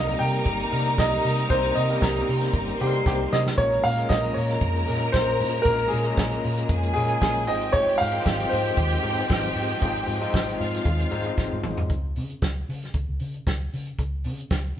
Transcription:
Already playing: C2 C3 G3 A#3 C4 D#4 A4 A#4 D#5 A#5
0.08 closed hi-hat
0.19 C3 G5, open hi-hat
0.34 closed hi-hat
0.45 G1, kick, closed hi-hat
0.60 closed hi-hat
0.71 C3 G3 A#3 C4 D#4 A#4, open hi-hat
0.86 closed hi-hat
0.98 C2 D#5, kick, snare
1.12 closed hi-hat
1.22 C3 C4, open hi-hat
1.38 closed hi-hat
1.48 C2 G3 A#3 C4 D#4 A#4 C5, kick, closed hi-hat
1.64 closed hi-hat
1.75 C3 D#5, open hi-hat
1.89 G3 A#3 C4 C#4 A#4, closed hi-hat
1.97 D#4
2.02 C2, kick, snare
2.16 closed hi-hat
2.28 C3, open hi-hat
2.41 snare, closed hi-hat
2.53 G1, kick, closed hi-hat
2.68 closed hi-hat
2.79 C3 G3 A#3 C4 D#4 G4 A4 C5 C6, open hi-hat
2.87 A#4
2.94 closed hi-hat
3.06 C2 G4, kick, snare
3.33 C3 D#5, snare
3.47 snare
3.55 A#1 C#3 G#3 A#3 C#4 F4 A#4 C#5 A#5, kick, closed hi-hat
3.72 closed hi-hat
3.83 A#2 F5, open hi-hat
3.97 G#3 A#3 C#4 F4 A#4, closed hi-hat
4.09 A#1 D#5, kick, snare
4.24 closed hi-hat
4.34 A#2 C#5, open hi-hat
4.50 snare, closed hi-hat
4.61 F2, kick, closed hi-hat
4.76 closed hi-hat
4.86 A#2 G#3 A#3 C#4 F4 A#4, open hi-hat
5.01 closed hi-hat
5.12 A#1 C5, kick, snare
5.28 closed hi-hat
5.40 A#2, open hi-hat
5.53 closed hi-hat
5.62 A#1 G#3 A#3 A#4, kick, closed hi-hat
5.66 C#4 F4 A#4
5.78 closed hi-hat
5.88 G#4, open hi-hat
5.93 A#2
6.04 G#3 A#3 C#4 F4 A#4, closed hi-hat
6.17 A#1, kick, snare
6.31 closed hi-hat
6.44 A#2, open hi-hat
6.57 closed hi-hat
6.69 F2 G#4 G#5, kick, closed hi-hat
6.83 closed hi-hat
6.94 A#2 G#3 A#3 C#4 F4 G#4 A#4, open hi-hat
7.09 closed hi-hat
7.21 A#1 G#4, kick, snare
7.35 closed hi-hat
7.47 G#1 F3 G#3 C4 D#4 F4 G4 C5 D#5 G5, open hi-hat
7.61 closed hi-hat
7.72 C#5, kick, closed hi-hat
7.88 closed hi-hat
7.98 G#2 F5, open hi-hat
8.12 G#3 C4 D#4 F4 A#4, closed hi-hat
8.20 C5
8.26 G#1, kick, snare
8.40 closed hi-hat
8.49 G#2 C5, open hi-hat
8.66 closed hi-hat
8.77 D#2, kick, closed hi-hat
8.91 closed hi-hat
9.03 G#2 G#3 C4 D#4 F4 B4, open hi-hat
9.11 C5
9.18 closed hi-hat
9.30 G#1, kick, snare
9.44 closed hi-hat
9.55 G#2 G#3, open hi-hat
9.70 closed hi-hat
9.81 G#1 G#3 C4 D#4 F4 G#4, kick, closed hi-hat
9.96 closed hi-hat
10.07 G#2, open hi-hat
10.21 G#3 C4 D#4 F4 C5, closed hi-hat
10.34 G#1, kick, snare
10.49 closed hi-hat
10.59 G#2 F4 F5, open hi-hat
10.74 snare, closed hi-hat
10.85 D#2, kick, closed hi-hat
10.99 closed hi-hat
11.10 G#2 G#3 C4 D#4 F4 C5, open hi-hat
11.25 closed hi-hat
11.38 G#1, kick, snare
11.52 G#2
11.63 G#1, mid tom
11.77 G#2, floor tom
11.89 C#2, kick, closed hi-hat
12.16 C#3, open hi-hat
12.30 closed hi-hat
12.42 C#2, kick, snare, closed hi-hat
12.69 C#3, open hi-hat
12.83 snare, closed hi-hat
12.94 C#2, kick, closed hi-hat
13.09 C#2
13.20 C#3, open hi-hat
13.34 closed hi-hat
13.47 C#2, kick, snare, closed hi-hat
13.73 C#3, open hi-hat
13.87 closed hi-hat
13.99 C#2, kick, closed hi-hat
14.24 C#3, open hi-hat
14.39 closed hi-hat
14.50 C#2, kick, snare, closed hi-hat

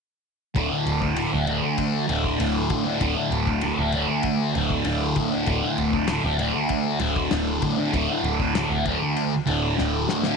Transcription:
0.55 D1 D2 A2 D3, kick, ride
0.71 A2 D3
0.86 D1, ride
1.00 A2 D3, kick
1.16 D2 A2 D3, ride
1.33 D1, muted distorted electric guitar stroke
1.47 D2 A2 D3, ride
1.63 muted distorted electric guitar stroke
1.78 kick, ride
2.07 D1 D2 A2 D3, ride
2.24 kick
2.38 D1 D2 A2 D3, ride
2.70 D2 A2 D3, kick, ride
2.85 A2 D3
3.00 D1 D2 A2 D3, kick, ride
3.16 A2 D3
3.31 D1, ride
3.47 A2 D3, kick
3.61 D2 A2, ride
3.66 D3
3.78 D1, muted distorted electric guitar stroke
3.92 D2 A2 D3, ride
4.08 muted distorted electric guitar stroke
4.23 kick, ride
4.54 D1 D2 A2 D3, ride
4.70 kick
4.85 D1 D2 A2, ride
4.89 D3
5.16 D2 A2 D3, kick, ride
5.31 A2 D3
5.46 D1 D2 A2 D3, kick, ride
5.63 A2 D3
5.78 D1, ride
5.93 A2 D3, kick
6.08 D2, snare, ride
6.12 A2 D3
6.24 D1, muted distorted electric guitar stroke
6.39 D2 A2 D3, ride
6.54 muted distorted electric guitar stroke
6.69 kick, ride
7.00 D1 D2 A2 D3, ride
7.16 kick
7.30 D1 D2 A2 D3, snare, ride
7.62 D2 A2 D3, kick, ride
7.77 A2 D3
7.93 D1 D2 A2 D3, kick, ride
8.10 A2 D3
8.23 D1, ride
8.39 A2 D3, kick
8.55 D2 A2 D3, snare, ride
8.70 D1, muted distorted electric guitar stroke
8.85 D2 A2 D3, kick, ride
9.01 muted distorted electric guitar stroke
9.17 ride
9.46 D1 D2 A2 D3, ride
9.76 D1 D2 A2 D3, snare
10.08 D2 A2 D3, snare
10.23 A2 D3, snare

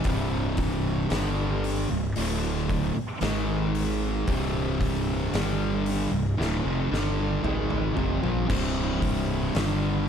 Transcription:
0.04 C1 C2 G2 C3, kick, open hi-hat
0.57 kick, open hi-hat
1.10 G1 G2 D3 G3, snare, open hi-hat
1.64 open hi-hat
1.90 C1 C2 G2
2.16 D1 D2 A2 D3, open hi-hat
2.69 kick, open hi-hat
2.95 muted fingered electric bass stroke, muted distorted electric guitar stroke
3.21 G#1 G#2 D#3 G#3, snare, open hi-hat
3.75 open hi-hat
4.27 C1 C2 G2 C3, kick, open hi-hat
4.81 kick, open hi-hat
5.32 G1 G2 D3 G3, snare, open hi-hat
5.86 open hi-hat
6.11 C1 C2 G2
6.37 D1 D2 A2, snare
6.64 F1 F2 C3
6.90 G1 G2 D3 G3, snare
7.43 G#1 G#2 D#3 G#3, mid tom
7.70 mid tom
7.95 F1 F2 C3, floor tom
8.22 A#1 A#2 F3, floor tom
8.48 C1 C2 G2 C3, kick, crash
9.02 kick, open hi-hat
9.54 G1 G2 D3 G3, snare, open hi-hat

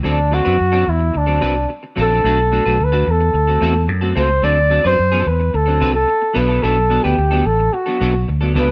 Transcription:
0.03 D2 F#3 C4 D4 A4
0.31 F#3 C4 D4 F#4 A4
0.45 F#2 F#3 C4 D4 B4
0.58 F#2, muted clean electric guitar stroke
0.72 F#3 C4 D4 A4
0.86 E2 E4, muted clean electric guitar stroke
0.99 muted clean electric guitar stroke
1.14 D2 D4, muted clean electric guitar stroke
1.26 F#3 C4 D4 A4
1.40 C2 F#3 C4 D4 B4
1.55 muted clean electric guitar stroke
1.69 muted clean electric guitar stroke
1.83 muted clean electric guitar stroke
1.96 A#1 F#3 C4 D4 A4
2.01 A4
2.10 F#3 C4 D4 A4
2.24 B1 A3 D4 F#4 A4
2.52 A3 D4 F#4 A4
2.65 B1 A3 D4 F#4 B4
2.79 D2, muted clean electric guitar stroke
2.84 B4
2.92 A3 D4 F#4 A4
3.07 E2, muted clean electric guitar stroke
3.11 A4
3.21 muted clean electric guitar stroke
3.34 D2, muted clean electric guitar stroke
3.47 A3 C4 F#4 A4
3.61 E2 A3 C4 F#4 A4
3.75 muted clean electric guitar stroke
3.88 F#2, muted clean electric guitar stroke
4.01 A3 C4 F#4 A4
4.15 C#2 A3 C4 F#4 A4 C5
4.30 muted clean electric guitar stroke
4.42 D2 F#3 C4 D4 A4 D5
4.70 F#3 C4 D4 A4
4.84 F#2 F#3 C4 D4 B4 C5
4.98 F#2, muted clean electric guitar stroke
5.12 F#3 C4 D4 A4
5.26 E2 B4, muted clean electric guitar stroke
5.40 muted clean electric guitar stroke
5.53 D2 A4, muted clean electric guitar stroke
5.66 F#3 C4 D4 A4
5.80 C2 F#3 C4 D4 B4
5.94 A4, muted clean electric guitar stroke
6.08 muted clean electric guitar stroke
6.22 muted clean electric guitar stroke
6.34 B1 F#3 B3 D4 A4 B4
6.48 F#3 B3 D4 A4
6.62 B1 F#3 B3 D4 A4
6.90 F#3 B3 D4 A4
7.03 D2 F#3 B3 D4 G4 B4
7.17 D2, muted clean electric guitar stroke
7.31 F#3 B3 D4 A4
7.44 A1 A4, muted clean electric guitar stroke
7.59 muted clean electric guitar stroke
7.73 F#4, muted clean electric guitar stroke
7.86 F#3 B3 D4 A4
8.00 B1 F#3 B3 D4 A4
8.14 muted clean electric guitar stroke
8.28 D2, muted clean electric guitar stroke
8.41 F#3 B3 D4 A4
8.54 C#2 F#3 B3 D4 A4
8.59 B4
8.68 muted clean electric guitar stroke

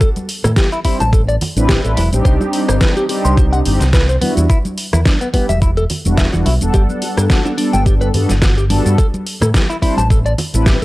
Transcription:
0.01 A4, kick, closed hi-hat, high bongo, shaker
0.16 closed hi-hat, high conga, shaker
0.29 open hi-hat
0.44 A2 A4, cross-stick, closed hi-hat, high bongo, low conga, shaker
0.56 G4, kick, snare, closed hi-hat, high conga, shaker
0.72 E4, closed hi-hat, shaker
0.84 G3 C4 D4 E4 C5, muted fingered electric bass stroke, kick, open hi-hat
1.00 A1 A5, closed hi-hat, high bongo, high conga, shaker
1.13 A4, kick, closed hi-hat, shaker
1.29 D5, closed hi-hat, shaker
1.41 open hi-hat, high bongo, low conga
1.56 A1 G3 C4 D4 E4 B4, closed hi-hat, high conga, shaker
1.69 G4, kick, snare, closed hi-hat, shaker
1.84 A1 G3 C4 D4 E4 A4 B4, closed hi-hat, shaker
1.97 E1 E4, open hi-hat, high bongo, high conga
2.12 A1 G3 C4 D4 D#4 G4, closed hi-hat, shaker
2.25 C2 C5, kick, closed hi-hat, shaker
2.41 high bongo, high conga, shaker
2.53 open hi-hat
2.68 G1 C5, cross-stick, closed hi-hat, shaker
2.81 B4, kick, snare, closed hi-hat, high conga, shaker
2.96 G4, closed hi-hat, high bongo, shaker
3.09 G3 C4 D4 D#4 G4, open hi-hat
3.25 C2 C6, closed hi-hat, high conga, shaker
3.37 C5, kick, closed hi-hat, high bongo, shaker
3.53 F#5, closed hi-hat, shaker
3.65 G1 G3 C4 D4 D#4 G4, open hi-hat, low conga
3.80 C2, snare, closed hi-hat, high conga, shaker
3.93 B4, kick, snare, closed hi-hat, high bongo, shaker
4.09 C5, closed hi-hat, shaker
4.21 G3 B3 D4 E4 F#4, muted fingered electric bass stroke, open hi-hat, high conga, low conga
4.37 E2, closed hi-hat, high bongo, shaker
4.50 E4, kick, closed hi-hat, shaker
4.65 closed hi-hat, high conga, shaker
4.78 open hi-hat
4.93 E2 E4, cross-stick, closed hi-hat, high bongo, low conga, shaker
5.06 D4, kick, snare, closed hi-hat, high conga, shaker
5.21 B3, closed hi-hat, shaker
5.34 G3 B3 D4 E4 G4, muted fingered electric bass stroke, kick, open hi-hat, high bongo
5.49 E1 E5, closed hi-hat, high conga, shaker
5.62 E4, kick, closed hi-hat, shaker
5.77 A4, closed hi-hat, shaker
5.90 open hi-hat, high bongo, low conga
6.05 E1 G3 B3 D4 E4 F#4, closed hi-hat, high conga, shaker
6.18 E5, kick, snare, closed hi-hat, shaker
6.33 E1 E3 G3 B3 D4 E4 F#4, closed hi-hat, high bongo, shaker
6.46 B1 E4, open hi-hat, high conga
6.60 E1 G3 B3 D4 A4 F#5, closed hi-hat, shaker
6.74 G1 G4, kick, closed hi-hat, shaker
6.89 high conga, shaker
7.02 open hi-hat, high bongo
7.17 G2 G4, cross-stick, closed hi-hat, shaker
7.30 F#4, kick, snare, closed hi-hat, high conga, shaker
7.45 D4, closed hi-hat, high bongo, shaker
7.58 G3 B3 D4 A4, open hi-hat
7.73 G1 G5, closed hi-hat, high conga, shaker
7.86 G4, kick, closed hi-hat, shaker
8.01 B4, closed hi-hat, high bongo, shaker
8.14 G2 G3 B3 D4 F#4 A4, open hi-hat, low conga
8.29 G1, snare, closed hi-hat, high conga, shaker
8.42 F#4, kick, snare, closed hi-hat, high bongo, shaker
8.57 G4, closed hi-hat, shaker
8.70 G3 B3 D4 F#4 A4, open hi-hat, high conga, low conga
8.86 G2, closed hi-hat, shaker
8.98 A4, kick, closed hi-hat, high bongo, shaker
9.14 closed hi-hat, high conga, shaker
9.26 open hi-hat
9.41 A2 A4, cross-stick, closed hi-hat, high bongo, low conga, shaker
9.54 G4, kick, snare, closed hi-hat, high conga, shaker
9.70 E4, closed hi-hat, shaker
9.82 G3 C4 D4 E4 C5, muted fingered electric bass stroke, kick, open hi-hat
9.97 A1 A5, closed hi-hat, high bongo, high conga, shaker
10.10 A4, kick, closed hi-hat, shaker
10.26 D5, closed hi-hat, shaker
10.38 open hi-hat, high bongo, low conga
10.53 A1 G3 C4 D4 E4 B4, closed hi-hat, high conga, shaker
10.66 G4, kick, snare, closed hi-hat, shaker
10.82 G3

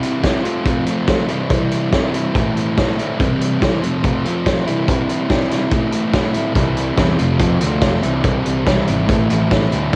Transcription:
Already playing: C3 E3 G3 C4 E4
0.03 closed hi-hat
0.22 C3 E3 G3 C4 E4, kick, snare, closed hi-hat
0.43 F2 C3 F3 A3 C4 F4, closed hi-hat
0.65 F3 A3 C4 F4, kick, closed hi-hat
0.86 F3 A3 C4 F4, closed hi-hat
1.07 kick, snare, closed hi-hat
1.28 C3 E3 G3 C4 E4, closed hi-hat
1.50 C3 E3 G3 C4 E4, kick, closed hi-hat
1.71 closed hi-hat
1.91 C3 E3 G3 C4 E4, kick, snare, closed hi-hat
2.13 G3 C4 E4, closed hi-hat
2.35 A2 E3 A3 C4 E4, kick, closed hi-hat
2.55 A3 C4 E4, closed hi-hat
2.78 kick, snare, closed hi-hat
2.98 A3 C4 E4, closed hi-hat
3.19 C3 E3 G3 C4 E4, kick, closed hi-hat
3.41 closed hi-hat
3.61 C3 E3 G3 C4 E4, kick, snare, closed hi-hat
3.82 F2 C3 F3 A3 C4 F4, closed hi-hat
4.03 F3 A3 C4 F4, kick, closed hi-hat
4.25 A3 C4 F4, closed hi-hat
4.29 F3
4.46 kick, snare, closed hi-hat
4.67 C3 E3 G3 C4 E4, closed hi-hat
4.88 C3 E3 G3 C4 E4, kick, closed hi-hat
5.09 closed hi-hat
5.29 C3 E3 G3 C4 E4, kick, snare, closed hi-hat
5.50 G3 C4 E4, snare, closed hi-hat
5.71 A2 E3 A3 C4 E4, kick, closed hi-hat
5.91 A3 C4 E4, closed hi-hat
6.13 kick, snare, closed hi-hat
6.33 A3 C4 E4, closed hi-hat
6.53 C2 C3 E3 G3 C4 E4, kick, closed hi-hat
6.77 closed hi-hat
6.95 E2 C3 E3 G3 C4 E4, kick, snare, closed hi-hat
7.18 F1 C3 F3 A3 C4 F4, closed hi-hat
7.22 F2
7.39 F2 F3 A3 C4 F4, kick, closed hi-hat
7.60 D2 F3 A3 C4 F4, closed hi-hat
7.81 F1, kick, snare, closed hi-hat
8.02 C2 C3 E3 G3 C4 E4, closed hi-hat
8.22 C2 C3 E3 G3 C4 E4, kick, closed hi-hat
8.45 C2, closed hi-hat
8.65 C2 C3 E3 G3 C4 E4, kick, snare, closed hi-hat
8.86 G#1 G3 C4 E4, closed hi-hat
9.07 A1 A2 E3 A3 C4 E4, kick, closed hi-hat
9.29 A1 A3 C4 E4, closed hi-hat
9.51 A1, kick, snare, closed hi-hat
9.72 D2 A3 C4 E4, closed hi-hat

